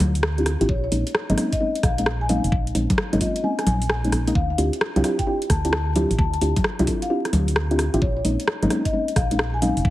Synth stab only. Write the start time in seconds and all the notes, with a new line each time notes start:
Already playing: C4 D4 E4 F4 G4
0.38 C4 D4 E4 F4 G4
0.61 C4 D4 E4 F4 G4
0.92 G#3 A#3 C4 C#4 D#4
1.30 G#3 A#3 C4 C#4 D#4
1.37 G#3 A#3 C4 C#4 D#4
1.60 G#3 A#3 C4 C#4 D#4
1.98 G#3 A#3 C4 C#4 D#4
2.29 G#3 A#3 C4 C#4 D#4
2.75 G#3 A#3 C4 C#4 D#4
3.13 G#3 A#3 C4 C#4 D#4
3.21 C4 C#4 F4
3.44 G#3 A#3 C4 C#4 D#4
4.04 G#3 A#3 C4 C#4 D#4
4.27 G#3 A#3 C4 C#4 D#4
4.58 C4 D4 E4 F4 G4
4.96 C4 D4 E4 F4 G4
5.04 C4 D4 E4 F4 G4
5.27 C4 D4 E4 F4 G4
5.65 C4 D4 E4 F4 G4
5.96 C4 D4 E4 F4 G4
6.41 C4 D4 E4 F4 G4
6.79 C4 D4 E4 F4 G4
6.87 C4 D4 E4 F4 A4
7.10 C4 D4 E4 F4 G4
7.71 C4 D4 E4 F4 G4
7.94 C4 D4 E4 F4 G4
8.25 G#3 A#3 C4 C#4 D#4
8.62 G#3 A#3 C4 C#4 D#4
8.70 G#3 A#3 C4 C#4 D#4
8.93 G#3 A#3 C4 C#4 D#4
9.31 G#3 A#3 C4 C#4 D#4
9.62 G#3 A#3 C4 C#4 D#4